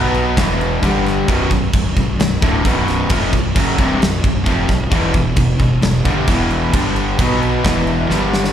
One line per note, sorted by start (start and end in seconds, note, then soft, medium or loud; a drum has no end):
0.00 0.34 B1 medium
0.00 0.36 B2 medium
0.00 0.37 F#3 medium
0.00 0.37 B3 medium
0.14 crash medium
0.37 0.80 E1 medium
0.37 0.82 E2 loud
0.37 0.82 B2 loud
0.37 0.83 E3 loud
0.37 kick loud
0.37 snare loud
0.37 crash medium
0.61 crash medium
0.82 1.25 G1 medium
0.82 1.27 G2 loud
0.82 1.27 D3 loud
0.82 1.28 G3 loud
0.82 kick medium
0.82 crash medium
1.06 snare soft
1.06 crash medium
1.28 1.49 B0 medium
1.28 1.50 B1 medium
1.28 1.50 F#2 loud
1.28 1.50 B2 loud
1.28 kick loud
1.28 crash medium
1.51 1.72 B0 medium
1.51 1.69 B1 medium
1.51 1.69 F#2 medium
1.51 kick loud
1.51 crash medium
1.73 1.95 B0 medium
1.73 1.93 B1 medium
1.73 1.93 F#2 medium
1.73 kick loud
1.73 crash medium
1.97 2.18 B0 medium
1.97 2.15 B1 medium
1.97 2.15 F#2 medium
1.97 kick medium
1.97 crash medium
2.19 2.41 B0 medium
2.19 2.37 B1 medium
2.19 2.38 F#2 medium
2.19 snare loud
2.19 crash medium
2.41 2.63 D1 medium
2.41 2.64 D2 loud
2.41 2.64 A2 medium
2.41 2.64 D3 loud
2.41 kick loud
2.41 crash medium
2.65 3.07 B0 loud
2.65 3.09 B1 medium
2.65 3.09 F#2 loud
2.65 3.10 B2 loud
2.65 kick loud
2.65 crash medium
2.88 snare soft
2.88 crash medium
3.09 3.31 F1 medium
3.09 3.32 F2 medium
3.09 3.33 C3 medium
3.09 3.33 F3 loud
3.09 kick loud
3.09 crash loud
3.33 3.54 B0 medium
3.33 3.51 B1 medium
3.33 3.52 F#2 medium
3.33 kick medium
3.33 crash medium
3.55 3.77 F#1 medium
3.55 3.77 F#2 medium
3.55 3.77 C#3 medium
3.55 3.78 F#3 loud
3.55 kick loud
3.55 crash loud
3.78 3.99 C1 medium
3.78 4.00 C2 medium
3.78 4.00 G2 medium
3.78 4.01 C3 loud
3.78 kick loud
3.78 crash medium
4.00 4.21 B0 medium
4.00 4.19 B1 medium
4.00 4.19 F#2 medium
4.00 snare loud
4.00 crash medium
4.23 4.45 B0 medium
4.23 4.42 B1 medium
4.23 4.42 F#2 medium
4.23 kick medium
4.23 crash medium
4.45 4.68 F1 medium
4.45 4.68 F2 loud
4.45 4.68 C3 loud
4.45 4.68 F3 loud
4.45 kick loud
4.45 crash medium
4.68 4.90 B0 medium
4.68 4.87 B1 medium
4.68 4.87 F#2 medium
4.68 kick medium
4.68 snare soft
4.68 crash medium
4.90 5.13 E1 medium
4.90 5.11 E2 loud
4.90 5.11 B2 loud
4.90 5.13 E3 loud
4.90 kick loud
4.90 crash medium
5.12 5.35 E1 medium
5.12 5.32 E2 medium
5.12 5.32 B2 medium
5.12 kick medium
5.12 crash medium
5.36 5.58 E1 medium
5.36 5.55 E2 medium
5.36 5.55 B2 medium
5.36 kick loud
5.36 crash medium
5.59 5.81 E1 medium
5.59 5.78 E2 medium
5.59 5.77 B2 medium
5.59 kick medium
5.59 crash medium
5.82 6.04 E1 medium
5.82 6.00 E2 medium
5.82 6.00 B2 medium
5.82 snare loud
5.82 crash medium
6.05 6.26 G1 loud
6.05 6.27 G2 medium
6.05 6.27 D3 medium
6.05 6.28 G3 loud
6.05 kick loud
6.05 crash medium
6.27 6.70 E1 loud
6.27 6.73 E2 loud
6.27 6.73 B2 loud
6.27 6.73 E3 loud
6.27 kick loud
6.27 crash medium
6.51 crash medium
6.73 7.15 G1 medium
6.73 7.18 G2 medium
6.73 7.19 D3 medium
6.73 7.19 G3 loud
6.73 kick loud
6.73 crash loud
6.96 crash medium
7.19 7.61 B1 medium
7.19 7.64 B2 medium
7.19 7.64 F#3 medium
7.19 7.64 B3 loud
7.19 kick loud
7.19 crash loud
7.43 crash medium
7.65 8.06 E1 medium
7.65 8.09 E2 loud
7.65 8.09 B2 loud
7.65 8.09 E3 loud
7.65 kick loud
7.65 snare loud
7.65 crash medium
7.87 crash medium
8.10 8.52 G1 medium
8.10 8.53 G2 medium
8.10 8.53 D3 loud
8.10 8.53 G3 medium
8.10 snare medium
8.34 snare medium
8.44 snare medium